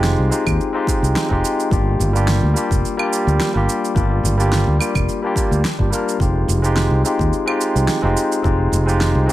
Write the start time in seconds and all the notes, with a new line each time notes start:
Already playing: F1 G#3 C4 D#4 F4 G4
0.04 snare, shaker
0.19 C2
0.30 G#3 C4 D#4 F4 G4, shaker
0.47 D#2, kick, claves, shaker
0.61 shaker
0.73 G#3 C4 D#4 F4 G4
0.87 kick, shaker
1.02 C2, shaker
1.16 snare, shaker
1.29 F1 G#3 C4 D#4 F4 G4, kick
1.45 shaker
1.60 shaker
1.70 G1 G3 A#3 D4 F4 G4, kick, shaker
1.99 G1, shaker
2.13 G3 A#3 D4 F4 G4, shaker
2.28 snare, shaker
2.43 D2
2.54 G3 A#3 D4 F4 G4, shaker
2.71 F1, kick, shaker
2.85 shaker
2.97 G3 A#3 D4 F4 G4, claves
3.13 shaker
3.27 D2, shaker
3.40 snare, shaker
3.54 G1 G3 A#3 D4 F4 G4
3.69 shaker
3.85 shaker
3.94 G1 G3 A#3 D4 F4 G4, kick, shaker
4.23 G1, shaker
4.38 G3 A#3 D4 F4 G4, shaker
4.52 snare, shaker
4.67 D2
4.79 G3 A#3 D4 F4 G4, claves, shaker
4.95 F1, kick, claves, shaker
5.09 shaker
5.23 G3 A#3 D4 F4
5.27 G4
5.35 G3 A#3 D4 F4 G4, kick, shaker
5.51 D2, shaker
5.65 snare, shaker
5.78 G1 G3 A#3 D4 F4 G4, kick
5.91 G3 A#3 D4 F4 A#4, shaker
6.09 shaker
6.19 F1 G#3 C4 D#4 F4 G4, kick, shaker
6.48 F1, shaker
6.62 G#3 C4 D#4 F4, shaker
6.66 G4
6.76 snare, shaker
6.91 C2
7.04 G#3 C4 D#4 F4 G4, shaker
7.19 D#2, kick, shaker
7.33 shaker
7.46 G#3 C4 D#4 F4 G4, claves
7.61 shaker
7.75 C2, shaker
7.88 snare, shaker
8.02 F1 G#3 C4 D#4 F4 G4
8.17 shaker
8.32 shaker
8.42 F1 G#3 C4 D#4 F4 G4, kick, shaker
8.72 F1, shaker
8.86 G#3 C4 D#4 F4 G4, shaker
9.01 snare, shaker
9.15 C2
9.26 G#3 C4 D#4 F4, shaker